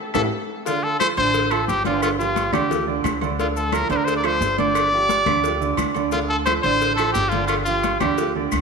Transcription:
0.14 upright bass A1, grand piano E4 G4 A4, trumpet A4, high bongo, high conga, high timbale, claves, maracas
0.66 grand piano D3 D4 D5, trumpet F4, cowbell, high conga, maracas
0.83 trumpet A4, high conga
1.00 grand piano F3 F4 A4, trumpet C5, cowbell, high conga, low agogo, claves, maracas
1.17 upright bass A1, grand piano D3 D4 D5, trumpet C5, cowbell, high conga, low agogo, maracas
1.34 cowbell, high conga, maracas
1.51 grand piano F3 F4 A4, trumpet A4, cowbell, high conga, low agogo, claves
1.68 upright bass G1, trumpet G4, cowbell, maracas
1.85 grand piano D3 D4 D5, trumpet F4, high conga, low agogo, maracas
2.02 trumpet F4, cowbell, high conga, low agogo, claves, maracas
2.19 grand piano F3 F4 G4, trumpet F4, high conga, maracas
2.36 cowbell, high conga, low agogo, maracas
2.52 upright bass D2, grand piano D3 D4 D5, trumpet G4, high conga, low conga, low agogo, claves, maracas
2.69 grand piano F3 F4 G4, cowbell, high conga, low conga, maracas
2.87 grand piano D3 D4 D5, high conga
3.04 upright bass D2, cowbell, high conga, low timbale, low agogo, claves, maracas
3.21 grand piano D3 D4 D5, high conga, low agogo, maracas
3.38 grand piano D3 D4 D5, trumpet F4, cowbell, high conga, maracas
3.56 trumpet A4, high conga, maracas
3.72 grand piano F3 F4 A4, trumpet A#4, cowbell, high conga, low agogo, claves, maracas
3.90 upright bass D2, grand piano D3 D4 D5, trumpet C5, cowbell, high conga, low agogo, maracas
3.97 trumpet A#4
4.05 trumpet C5, cowbell, high conga, maracas
4.17 trumpet D5
4.24 grand piano F3 F4 A4, trumpet C5, cowbell, high conga, low agogo, claves
4.41 upright bass G1, cowbell, high conga, low timbale, maracas
4.58 grand piano D3 D4 D5, trumpet D5, high conga, low agogo, maracas
4.75 cowbell, low agogo, claves, maracas
4.92 grand piano F3 F4 G4, high conga
5.09 cowbell, high conga, low agogo, maracas
5.26 upright bass D2, grand piano D3 D4 D5, high conga, low conga, low agogo, claves, maracas
5.44 grand piano F3 F4 G4, cowbell, high conga, maracas
5.61 grand piano D3 D4 D5, high conga, maracas
5.77 upright bass D2, cowbell, high conga, low agogo, claves, maracas
5.94 grand piano D3 D4 D5, high conga, low agogo, maracas
6.12 grand piano D3 D4 D5, trumpet F4, cowbell, high conga, maracas
6.29 trumpet A4, high conga
6.46 grand piano F3 F4 A4, trumpet C5, cowbell, high conga, low agogo, claves, maracas
6.63 upright bass A1, grand piano D3 D4 D5, trumpet C5, cowbell, high conga, low agogo, maracas
6.81 cowbell, high conga, maracas
6.96 grand piano F3 F4, trumpet A4, cowbell, high conga, low agogo, claves, maracas
7.00 grand piano A4
7.13 upright bass G1, trumpet G4, cowbell, high conga, low timbale, maracas
7.29 trumpet F4, high conga, low agogo, maracas
7.33 grand piano D3 D4 D5
7.47 trumpet F4, cowbell, low agogo, claves, maracas
7.64 grand piano F3 F4 G4, trumpet F4, high conga, maracas
7.83 cowbell, high conga, low agogo, maracas
8.00 upright bass D2, grand piano D3 D4 D5, trumpet G4, high conga, low conga, low agogo, claves, maracas
8.18 grand piano F3 F4 G4, cowbell, maracas
8.35 grand piano D3 D4 D5, high conga
8.52 upright bass D2, cowbell, high conga, low agogo, claves, maracas

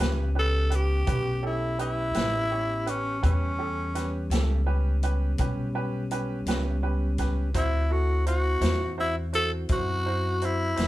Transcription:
Already playing: tonewheel organ B3 C#4 G4
0.00 upright bass C#2, grand piano C#4 G4 B4, snare
0.35 grand piano C#4 G4 B4, tenor saxophone A4
0.70 grand piano C#4 G4 B4, closed hi-hat
0.75 tenor saxophone G4
1.07 upright bass B1, grand piano C#4 G4 B4, kick, closed hi-hat
1.43 grand piano C#4 G4 A4, tenor saxophone E4
1.78 grand piano C#4 G4 B4, tenor saxophone E4, closed hi-hat
2.14 upright bass A1, grand piano C#4 G4 B4, snare, closed hi-hat
2.51 grand piano C#4 G4 C#5
2.86 grand piano C#4 G4 B4, tenor saxophone C#4, closed hi-hat
3.22 upright bass E2, tonewheel organ G3 B3 C#4, grand piano C#4 G4 B4, tenor saxophone C#4, kick, closed hi-hat
3.59 grand piano C#4 G4 A4
3.95 grand piano C#4 G4 B4, snare, closed hi-hat
4.30 upright bass C#2, grand piano C#4 G4 A4, snare, closed hi-hat
4.66 grand piano C#4 G4 B4
5.03 grand piano C#4 G4 B4, closed hi-hat
5.38 upright bass B1, grand piano C#4 G4 B4, kick, closed hi-hat
5.75 grand piano C#4 G4 B4
6.11 grand piano C#4 G4 B4, closed hi-hat
6.46 upright bass C#2, grand piano C#4 G4 B4, snare, closed hi-hat
6.83 grand piano C#4 G4 B4
7.18 grand piano C#4 G4 B4, kick, snare, closed hi-hat
7.54 upright bass D2, tonewheel organ C4 E4 F#4, grand piano E4 F#4 C5, tenor saxophone E4, kick, closed hi-hat
7.90 grand piano E4 F#4 A4, tenor saxophone F#4
8.27 grand piano E4 F#4 C5, tenor saxophone F#4, closed hi-hat
8.61 upright bass E2, grand piano E4 F#4 C5, snare, closed hi-hat
8.98 grand piano E4 F#4 C5, tenor saxophone E4
9.33 grand piano E4 F#4 C5, tenor saxophone A4, closed hi-hat
9.69 upright bass F#2, grand piano E4 F#4 C5, tenor saxophone F#4, kick, closed hi-hat
10.06 grand piano E4 F#4 C5
10.42 grand piano E4 F#4 C5, tenor saxophone E4, closed hi-hat
10.76 upright bass E2, grand piano E4 F#4 C5, snare, closed hi-hat

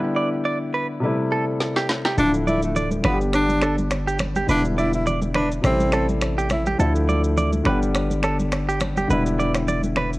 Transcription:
Already playing: grand piano D3 G3 B3 E4
0.16 clean electric guitar D5
0.45 clean electric guitar D5
0.74 clean electric guitar B4
1.00 grand piano C3 G3 A3
1.05 grand piano E4
1.32 clean electric guitar A4
1.60 snare
1.76 clean electric guitar G4, snare
1.89 snare
2.05 clean electric guitar G4, snare
2.17 808-style bass D1, grand piano D3 F3 A3 E4, tenor saxophone D4, clean electric guitar A4, shaker
2.34 shaker
2.47 tenor saxophone E4, clean electric guitar D5, high conga, shaker
2.62 tenor saxophone A3, shaker
2.76 clean electric guitar D5, low conga, shaker
2.91 high conga, shaker
3.02 808-style bass G1, grand piano D3 G3 B3, tenor saxophone B3, clean electric guitar B4, finger snap, cross-stick, low conga
3.07 grand piano F4
3.13 grand piano G4
3.21 shaker
3.33 tenor saxophone D4, finger snap, cross-stick, shaker
3.48 high conga, shaker
3.61 clean electric guitar A4, finger snap, cross-stick, shaker
3.78 high conga, shaker
3.91 finger snap, cross-stick, shaker
4.07 clean electric guitar G4, shaker
4.19 finger snap, cross-stick, high conga, low conga, shaker
4.35 clean electric guitar G4, high conga, shaker
4.46 808-style bass E1, grand piano D3 F3 B3, tenor saxophone D4, clean electric guitar B4, shaker
4.51 grand piano G3 E4
4.65 shaker
4.78 tenor saxophone E4, clean electric guitar D5, high conga, shaker
4.93 tenor saxophone E4, shaker
5.07 clean electric guitar D5, low conga, shaker
5.21 high conga, shaker
5.34 tenor saxophone D4, clean electric guitar B4, finger snap, cross-stick, low conga
5.52 shaker
5.62 808-style bass A1, grand piano C3 G3 A3, tenor saxophone C4, finger snap, cross-stick, shaker
5.67 grand piano E4
5.79 high conga, shaker
5.92 clean electric guitar A4, finger snap, cross-stick, shaker
6.09 high conga, shaker
6.21 finger snap, cross-stick, shaker
6.38 clean electric guitar G4, shaker
6.49 tenor saxophone E4, finger snap, cross-stick, high conga, low conga, shaker
6.66 clean electric guitar G4, high conga, shaker
6.78 808-style bass D2, grand piano D3 F3 A3 E4, clean electric guitar A4, shaker
6.95 shaker
7.09 clean electric guitar D5, high conga, shaker
7.24 shaker
7.37 clean electric guitar D5, low conga, shaker
7.52 high conga, shaker
7.64 808-style bass G1, grand piano D3 G3 B3, clean electric guitar B4, finger snap, cross-stick, low conga
7.68 grand piano G4
7.82 shaker
7.95 finger snap, cross-stick, shaker
8.10 high conga, shaker
8.23 clean electric guitar A4, finger snap, cross-stick, shaker
8.39 high conga, shaker
8.52 finger snap, cross-stick, shaker
8.69 clean electric guitar G4, shaker
8.80 finger snap, cross-stick, high conga, low conga, shaker
8.97 clean electric guitar G4, high conga, shaker
9.08 808-style bass E1, grand piano D3 G3 B3, clean electric guitar B4, shaker
9.13 grand piano E4
9.26 shaker
9.39 clean electric guitar D5, high conga, shaker
9.54 finger snap, cross-stick, shaker
9.68 clean electric guitar D5, low conga, shaker
9.83 high conga, shaker
9.96 clean electric guitar B4, finger snap, cross-stick, low conga
10.13 shaker

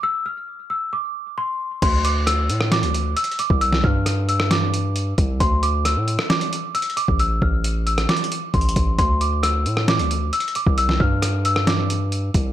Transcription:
0.03 celesta E6
0.26 celesta F6
0.70 celesta E6
0.93 celesta D6
1.38 celesta C6
1.82 808-style bass D2, celesta C6, kick, closed hi-hat, crash
2.05 celesta D6, closed hi-hat
2.26 celesta E6, cross-stick, closed hi-hat
2.49 808-style bass A2, closed hi-hat
2.61 cross-stick
2.72 celesta D6, snare, closed hi-hat
2.83 808-style bass D2, closed hi-hat
2.94 closed hi-hat
3.16 celesta E6, closed hi-hat
3.24 closed hi-hat
3.31 closed hi-hat
3.39 celesta D6, closed hi-hat
3.50 808-style bass C2, kick
3.61 celesta E6, closed hi-hat
3.73 snare
3.84 808-style bass G2, celesta F6, kick
4.06 cross-stick, closed hi-hat
4.29 celesta E6, closed hi-hat
4.40 cross-stick
4.51 celesta D6, snare, closed hi-hat
4.74 closed hi-hat
4.96 closed hi-hat
5.18 808-style bass C2, kick, closed hi-hat
5.40 808-style bass D2, celesta C6, kick, closed hi-hat
5.63 celesta D6, closed hi-hat
5.85 celesta E6, cross-stick, closed hi-hat
5.96 808-style bass A2
6.08 closed hi-hat
6.19 cross-stick
6.30 celesta D6, snare, closed hi-hat
6.41 closed hi-hat
6.53 closed hi-hat
6.75 celesta E6, closed hi-hat
6.82 closed hi-hat
6.90 closed hi-hat
6.97 celesta D6, closed hi-hat
7.08 808-style bass A1, kick
7.19 celesta E6, closed hi-hat
7.42 808-style bass A1, celesta F6, kick
7.64 closed hi-hat
7.87 celesta E6, closed hi-hat
7.98 cross-stick, closed hi-hat
8.09 celesta D6, snare, closed hi-hat
8.17 closed hi-hat
8.24 closed hi-hat
8.32 closed hi-hat
8.54 808-style bass A1, celesta C6, kick, closed hi-hat
8.61 closed hi-hat
8.69 closed hi-hat
8.76 808-style bass A1, kick, closed hi-hat
8.99 808-style bass D2, celesta C6, kick, closed hi-hat
9.21 celesta D6, closed hi-hat
9.43 celesta E6, cross-stick, closed hi-hat
9.66 808-style bass A2, closed hi-hat
9.77 cross-stick
9.88 celesta D6, snare, closed hi-hat
9.99 808-style bass D2, closed hi-hat
10.11 closed hi-hat
10.33 celesta E6, closed hi-hat
10.40 closed hi-hat
10.48 closed hi-hat
10.55 celesta D6, closed hi-hat
10.67 808-style bass C2, kick
10.78 celesta E6, closed hi-hat
10.89 snare
11.00 808-style bass G2, celesta F6, kick
11.22 cross-stick, closed hi-hat
11.45 celesta E6, closed hi-hat
11.56 cross-stick
11.67 celesta D6, snare, closed hi-hat
11.90 closed hi-hat
12.12 closed hi-hat
12.34 808-style bass C2, kick, closed hi-hat

